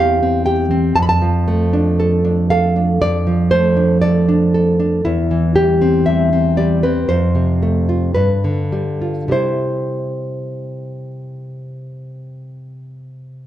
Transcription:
Already playing: E2 E3 G3 C4 G4 F5
0.23 C4
0.46 G4 G5
0.71 C4
0.96 F2 A5
1.02 B5
1.09 A5
1.22 F3
1.48 A3
1.73 D4
2.00 A4
2.25 D4
2.50 A4 F5
2.76 D4
3.02 F2 D5
3.27 F3
3.51 A3 C5
3.77 D4
4.02 A4 D5
4.29 D4
4.54 A4
4.80 D4
5.05 E2 E4
5.31 E3
5.56 G3 G4
5.82 C4
6.06 G3 E5
6.33 C4
6.57 G3 D5
6.83 C4 B4
7.09 F2 C5
7.35 C3
7.63 A3
7.89 F4
8.15 G2 B4
8.44 D3
8.72 G3
9.02 F4
9.28 C3 G3 E4
9.32 C5

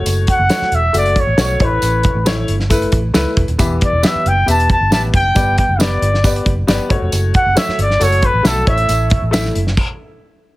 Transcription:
Already playing: A3 F#4 C#5
0.06 F#1, closed hi-hat, tambourine
0.27 F#5, kick, closed hi-hat
0.39 F#1
0.49 A3 F#4 C#5, snare, closed hi-hat, tambourine
0.62 muted fingered electric bass stroke, snare
0.72 E1 E5, closed hi-hat
0.93 F#1 A3 F#4 E5, closed hi-hat, tambourine
0.97 D5
1.06 closed hi-hat
1.16 C#5, kick, closed hi-hat
1.27 A1
1.37 B1 A3 F#4 C#5, snare, closed hi-hat, tambourine
1.42 C#5
1.60 A1 A2 A3 E4 C#5, kick, closed hi-hat
1.64 B4
1.82 A1, closed hi-hat, tambourine
2.03 kick, closed hi-hat
2.15 A1
2.25 A3 E4 C#5, snare, closed hi-hat, tambourine
2.48 G1, closed hi-hat
2.60 snare
2.70 A3 E4 B4, kick, closed hi-hat, tambourine
2.82 closed hi-hat
2.92 A1, kick, closed hi-hat
3.14 C#2 A3 E4 B4, snare, closed hi-hat, tambourine
3.37 E1, kick, closed hi-hat
3.48 D#1, closed hi-hat
3.58 E1 E3 B3 G4 E5, kick, closed hi-hat, tambourine
3.81 D5, kick, closed hi-hat
3.92 E1
4.03 B3 G4 E5, snare, closed hi-hat, tambourine
4.15 muted fingered electric bass stroke
4.26 F#1 G5, closed hi-hat
4.46 E1 B3 G4 E5 A5, closed hi-hat, tambourine
4.60 closed hi-hat
4.69 A5, kick, closed hi-hat
4.81 G1
4.91 B3 G4 E5 A5, snare, closed hi-hat, tambourine
5.14 F#1 G5, kick, closed hi-hat
5.35 G1 G3 B3 G4 D5, kick, closed hi-hat, tambourine
5.58 G5, kick, closed hi-hat
5.69 F#1
5.79 B3 G4 D5, snare, closed hi-hat, tambourine
6.02 G1, closed hi-hat
6.14 snare
6.24 B3 G4 D5, kick, closed hi-hat, tambourine
6.36 closed hi-hat
6.46 F#1, kick, closed hi-hat
6.67 G1 B3 G4 D5, snare, closed hi-hat, tambourine
6.89 F#1 A3 F#4 C#5, kick, closed hi-hat
7.02 F1
7.12 F#1, closed hi-hat, tambourine
7.34 F#5, kick, closed hi-hat
7.46 F#1
7.55 A3 F#4 C#5 E5, snare, closed hi-hat, tambourine
7.68 muted fingered electric bass stroke, snare
7.78 G1 D5, closed hi-hat
7.90 snare
8.00 F#1 A3 F#4 A4 C#5, closed hi-hat, tambourine
8.12 closed hi-hat
8.22 B4, kick, closed hi-hat
8.34 A1
8.43 B1 A3 F#4 A4 E5, snare, closed hi-hat, tambourine
8.66 A1 A2 A3 E4 C#5 E5, kick, closed hi-hat
8.78 closed hi-hat
8.89 A1, closed hi-hat, tambourine
9.10 kick, closed hi-hat
9.22 A1
9.31 A3 E4 E5, snare, closed hi-hat, tambourine
9.44 snare
9.55 F#1, closed hi-hat
9.67 snare
9.77 kick, crash

